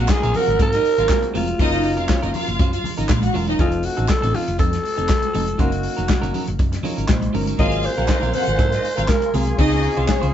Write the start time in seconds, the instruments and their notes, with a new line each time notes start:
Already playing: grand piano F#3 A#3 C4 F4 G#4, alto saxophone F#4
0.08 violin section D#4 D#5, alto saxophone G#4, muted clean electric guitar stroke, kick, snare, clap, high conga
0.23 fingered electric bass A#1, clean electric guitar F#3 C4 F4 A#4, violin section F4 F5, closed hi-hat
0.34 clean electric guitar F#3 C4 F4 A#4, violin section F#4 F#5, alto saxophone A#4, open hi-hat, low conga
0.47 fingered electric bass G#1, muted clean electric guitar stroke, closed hi-hat
0.59 fingered electric bass G#2, clean electric guitar F#3 C4 F4 A#4, alto saxophone A#4, kick, closed hi-hat, muted conga
0.73 violin section D#4 D#5, muted clean electric guitar stroke, snare, closed hi-hat
0.84 muted clean electric guitar stroke, open hi-hat
0.98 fingered electric bass G#1, clean electric guitar F#3 C4 F4 A#4, violin section F4 F5, closed hi-hat
1.09 grand piano F#3 A#3 C4 F4 G#4, kick, snare, clap, high conga
1.22 muted clean electric guitar stroke, closed hi-hat, high conga
1.34 fingered electric bass F1, clean electric guitar F#3 C4 F4 A#4, alto saxophone F4, open hi-hat, high conga
1.48 muted clean electric guitar stroke, closed hi-hat
1.58 fingered electric bass F#1, grand piano F#3 A#3 C#4 F4 A#4, clean electric guitar F#3 C#4 F4 C5, violin section D#4 D#5, kick, closed hi-hat, muted conga
1.72 muted clean electric guitar stroke, closed hi-hat
1.83 muted clean electric guitar stroke, open hi-hat
1.97 fingered electric bass F1, clean electric guitar F#3 C#4 F4 A#4, violin section F4 F5, closed hi-hat
2.09 violin section C#4 C#5, muted clean electric guitar stroke, kick, snare, clap, high conga
2.22 fingered electric bass F#1, clean electric guitar F#3 C#4 F4 A#4, violin section D#4 D#5, closed hi-hat
2.34 clean electric guitar F#3 C#4 F4 A#4, violin section F4 F5, open hi-hat, low conga
2.48 fingered electric bass F#1, muted clean electric guitar stroke, closed hi-hat
2.59 fingered electric bass F#2, clean electric guitar F#3 C#4 F4 C5, kick, closed hi-hat, muted conga
2.73 violin section F4 F5, muted clean electric guitar stroke, closed hi-hat
2.84 muted clean electric guitar stroke, open hi-hat, muted conga, low conga
2.97 fingered electric bass G#1, clean electric guitar F#3 C#4 F4 A#4, violin section D#4 D#5, closed hi-hat
3.09 fingered electric bass A#1, violin section F4 F5, kick, snare, clap, high conga
3.22 violin section F#4 F#5, muted clean electric guitar stroke, closed hi-hat, high conga
3.34 fingered electric bass E1, clean electric guitar F#3 C#4 F4 A#4, violin section F4 F5, open hi-hat, high conga
3.47 clean electric guitar F#3 C#4 F4 A#4, violin section D#4 D#5, closed hi-hat
3.58 fingered electric bass F1, grand piano F3 A3 C4 D#4 A4, clean electric guitar F3 C4 D#4 A4, alto saxophone F4, kick, closed hi-hat, muted conga
3.72 muted clean electric guitar stroke, closed hi-hat
3.83 alto saxophone F#4, muted clean electric guitar stroke, open hi-hat
3.97 fingered electric bass A1, clean electric guitar F3 C4 D#4 A4, closed hi-hat
4.08 alto saxophone A4, kick, snare, clap, high conga
4.22 fingered electric bass A1, clean electric guitar F3 C4 D#4 A4, closed hi-hat
4.33 clean electric guitar F3 C4 D#4 A4, alto saxophone F4, open hi-hat, low conga
4.47 fingered electric bass F1, muted clean electric guitar stroke, closed hi-hat
4.58 fingered electric bass F2, clean electric guitar F3 C4 D#4 A4, alto saxophone A4, kick, closed hi-hat, muted conga
4.72 muted clean electric guitar stroke, snare, closed hi-hat
4.83 muted clean electric guitar stroke, open hi-hat, muted conga
4.96 fingered electric bass F1, clean electric guitar F3 C4 D#4 A4, closed hi-hat
5.09 kick, snare, clap, high conga
5.22 muted clean electric guitar stroke, closed hi-hat, high conga
5.34 fingered electric bass F1, clean electric guitar F3 C4 D#4 A4, open hi-hat, high conga
5.47 muted clean electric guitar stroke, closed hi-hat
5.58 fingered electric bass F#1, clean electric guitar F#3 C#4 D#4 C5, grand piano F#3 A#3 C#4 D#4 A#4, alto saxophone F#4, kick, closed hi-hat, muted conga
5.71 muted clean electric guitar stroke, closed hi-hat
5.83 muted clean electric guitar stroke, open hi-hat
5.97 fingered electric bass F1, clean electric guitar F#3 C#4 D#4 A#4, closed hi-hat
6.09 muted clean electric guitar stroke, kick, snare, clap, high conga
6.22 fingered electric bass F#1, clean electric guitar F#3 C#4 D#4 A#4, closed hi-hat
6.34 clean electric guitar F#3 C#4 D#4 A#4, open hi-hat, low conga
6.47 fingered electric bass F#1, muted clean electric guitar stroke, closed hi-hat
6.59 fingered electric bass F#2, muted clean electric guitar stroke, kick, closed hi-hat, muted conga
6.72 muted clean electric guitar stroke, snare, closed hi-hat
6.83 clean electric guitar F#3 C#4 D#4 A#4, grand piano F4 C#5, open hi-hat, muted conga, low conga
6.97 fingered electric bass G#1, clean electric guitar F#3 C#4 D#4 A#4, closed hi-hat
7.08 fingered electric bass A#1, grand piano D#4 C5, kick, snare, clap, high conga
7.22 muted clean electric guitar stroke, closed hi-hat, high conga
7.33 fingered electric bass G1, clean electric guitar F#3 C#4 D#4 A#4, grand piano C#4 A#4, open hi-hat, high conga
7.47 clean electric guitar F#3 C#4 D#4 A#4, closed hi-hat
7.58 fingered electric bass G#1, grand piano F#3 A#3 B3 F4 G#4, clean electric guitar F#3 C4 F4 A#4, violin section F4 F5, tonewheel organ A#4 F5 G#5 C6, alto saxophone D#5, kick, closed hi-hat, muted conga
7.65 grand piano C4
7.72 muted clean electric guitar stroke, closed hi-hat
7.83 alto saxophone C5, muted clean electric guitar stroke, open hi-hat
7.97 fingered electric bass A#1, clean electric guitar F#3 C4 F4 A#4, violin section F#4 F#5, closed hi-hat
8.08 violin section D#4 D#5, kick, snare, clap, high conga
8.22 fingered electric bass A#1, clean electric guitar F#3 C4 F4 A#4, violin section F4 F5, closed hi-hat
8.33 clean electric guitar F#3 C4 F4 A#4, violin section F#4 F#5, alto saxophone C5, open hi-hat, low conga
8.47 fingered electric bass G#1, muted clean electric guitar stroke, closed hi-hat
8.58 fingered electric bass G#2, clean electric guitar F#3 C4 F4 A#4, kick, closed hi-hat, muted conga
8.72 violin section D#4 D#5, muted clean electric guitar stroke, snare, closed hi-hat
8.84 muted clean electric guitar stroke, open hi-hat, muted conga
8.97 fingered electric bass G#1, clean electric guitar F#3 C4 F4 A#4, violin section F4 F5, closed hi-hat
9.08 alto saxophone A#4, kick, snare, clap, high conga
9.21 muted clean electric guitar stroke, closed hi-hat, high conga
9.34 fingered electric bass C2, clean electric guitar F#3 C4 F4 A#4, alto saxophone G#4, open hi-hat, high conga
9.47 muted clean electric guitar stroke, closed hi-hat
9.57 fingered electric bass C#2, grand piano F3 G#3 C4 C#4 G#4, clean electric guitar C4 F4 G#4 D#5, violin section D#4 D#5, tonewheel organ G#5 C#6, kick, closed hi-hat, muted conga
9.71 muted clean electric guitar stroke, closed hi-hat
9.83 muted clean electric guitar stroke, open hi-hat
9.97 fingered electric bass C2, clean electric guitar C4 F4 G#4 C5, violin section F4 F5, closed hi-hat
10.08 violin section C#4 C#5, muted clean electric guitar stroke, kick, snare, clap, high conga
10.22 fingered electric bass C#2, violin section C4 C5, clean electric guitar C4 F4 G#4 C5, closed hi-hat